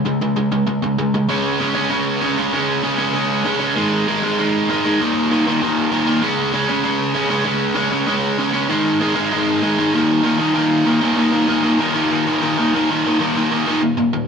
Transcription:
0.05 C#3 G#3
0.21 C#3 G#3
0.36 C#3 G#3
0.52 C#3 G#3
0.67 C#3 G#3
0.82 C#3 G#3
0.99 C#3 G#3
1.14 C#3 G#3
1.29 C#3 G#3 C#4
1.60 C#3 G#3 C#4
1.75 C#3 G#3 C#4
1.90 C#3 G#3 C#4
2.21 C#3 G#3 C#4
2.38 C#3 G#3 C#4
2.53 C#3 G#3 C#4
2.84 C#3 G#3 C#4
2.98 C#3 G#3 C#4
3.14 C#3 G#3 C#4
3.44 C#3 G#3 C#4
3.59 C#3 G#3 C#4
3.76 G#2 D#3 G#3
4.08 G#2 D#3 G#3
4.23 G#2 D#3 G#3
4.39 G#2 D#3 G#3
4.70 G#2 D#3 G#3
4.85 G#2 D#3 G#3
5.00 D#2 A#2 D#3
5.31 D#2 A#2 D#3
5.47 D#2 A#2 D#3
5.62 D#2 A#2 D#3
5.92 D#2 A#2 D#3
6.07 D#2 A#2 D#3
6.22 C#3 G#3 C#4
6.53 C#3 G#3 C#4
6.69 C#3 G#3 C#4
6.83 C#3 G#3 C#4
7.14 C#3 G#3 C#4
7.30 C#3 G#3 C#4
7.45 C#3 G#3 C#4
7.75 C#3 G#3 C#4
7.91 C#3 G#3 C#4
8.07 C#3 G#3 C#4
8.38 C#3 G#3 C#4
8.53 C#3 G#3 C#4
8.69 G#2 D#3 G#3
9.01 G#2 D#3 G#3
9.15 G#2 D#3 G#3
9.32 G#2 D#3 G#3
9.63 G#2 D#3 G#3
9.78 G#2 D#3 G#3
9.93 D#2 A#2 D#3
10.23 D#2 A#2 D#3
10.39 D#2 A#2 D#3
10.55 D#2 A#2 D#3
10.85 D#2 A#2 D#3
11.02 D#2 A#2 D#3
11.16 D#2 A#2 D#3
11.33 D#2 A#2 D#3
11.47 D#2 A#2 D#3
11.63 D#2 A#2 D#3
11.79 D#2 A#2 D#3
11.94 D#2 A#2 D#3
12.11 D#2 A#2 D#3
12.27 D#2 A#2 D#3
12.42 D#2 A#2 D#3
12.58 D#2 A#2 D#3
12.74 D#2 A#2 D#3
12.91 D#2 A#2 D#3
13.06 D#2 A#2 D#3
13.20 D#2 A#2 D#3
13.36 D#2 A#2 D#3
13.51 D#2 A#2 D#3
13.67 D#2 A#2 D#3
13.81 D#2 A#2
13.97 D#2 A#2
14.13 D#2 A#2

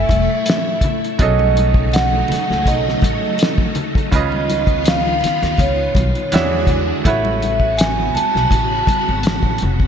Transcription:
Already playing: A2 F#3 A3 C#4 E4 G#4 A4 E5
0.09 E1, kick, closed hi-hat, high conga
0.46 closed hi-hat, muted conga
0.50 snare
0.81 kick, closed hi-hat, low conga
1.04 closed hi-hat
1.18 B1 B2 C#3 F#3 A3 C#4 D#4 G#4 A4 D#5, kick, closed hi-hat
1.23 D#5
1.39 high conga
1.57 closed hi-hat, high conga
1.74 kick
1.92 F#5, closed hi-hat, muted conga
1.96 snare
2.28 muted upright bass stroke, closed hi-hat, low conga
2.33 snare
2.50 C#2, snare
2.66 B1 D#5, kick, closed hi-hat
2.88 snare
3.02 A1, kick, closed hi-hat, high conga
3.38 closed hi-hat, muted conga
3.43 snare
3.58 kick
3.75 closed hi-hat, low conga
3.95 kick, closed hi-hat
4.11 C#2 C#3 D#3 B3 C#4 F4 B4 D#5, kick, closed hi-hat, muted conga
4.16 D#5
4.32 high conga
4.49 closed hi-hat, muted conga, high conga
4.67 kick, closed hi-hat
4.84 F5, snare, closed hi-hat, muted conga
5.21 muted upright bass stroke, closed hi-hat, muted conga, low conga
5.25 snare
5.42 D#2, snare, closed hi-hat
5.58 C#2 C#5, kick, closed hi-hat, muted conga
5.95 B1, kick, closed hi-hat, high conga
6.15 closed hi-hat
6.32 E2 D3 E3 G#3 D4 F#4 G4 E5, snare, closed hi-hat
6.40 G#4
6.67 kick, closed hi-hat, low conga
7.04 A1 C#3 A3 B3 E4 F#4 B4 E5, kick, closed hi-hat, muted conga
7.09 C#5
7.25 high conga
7.42 closed hi-hat, high conga
7.60 kick
7.77 G#5, snare, closed hi-hat
8.15 A5, muted upright bass stroke, closed hi-hat, high conga, low conga
8.35 B1, snare
8.51 A1, kick, closed hi-hat, muted conga
8.87 muted upright bass stroke, kick, closed hi-hat, high conga
9.09 G#1
9.23 snare, closed hi-hat, muted conga
9.43 A1, kick
9.58 closed hi-hat, muted conga, low conga
9.62 F1
9.80 kick

